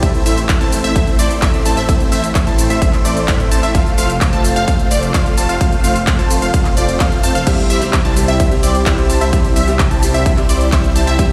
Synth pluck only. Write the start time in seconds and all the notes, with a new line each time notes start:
0.03 E5
0.26 E5
0.61 A5
0.84 E5
0.96 E5
1.19 D5
1.42 E5
1.66 A5
1.77 E5
1.89 E5
2.12 E5
2.47 A5
2.70 E5
2.82 E5
3.05 D5
3.28 E5
3.51 A5
3.63 E5
3.75 F5
3.98 F5
4.33 A5
4.56 F5
4.68 F5
4.91 D5
5.14 F5
5.38 A5
5.49 F5
5.61 F5
5.84 F5
6.19 A5
6.42 F5
6.54 F5
6.77 D5
7.00 F5
7.24 A5
7.35 F5
7.47 E5
7.70 E5
8.05 A5
8.28 E5
8.40 E5
8.63 D5
8.86 E5
9.10 A5
9.21 E5
9.33 E5
9.56 E5
9.91 A5
10.14 E5
10.26 E5
10.49 D5
10.72 E5
10.96 A5
11.07 E5
11.19 E5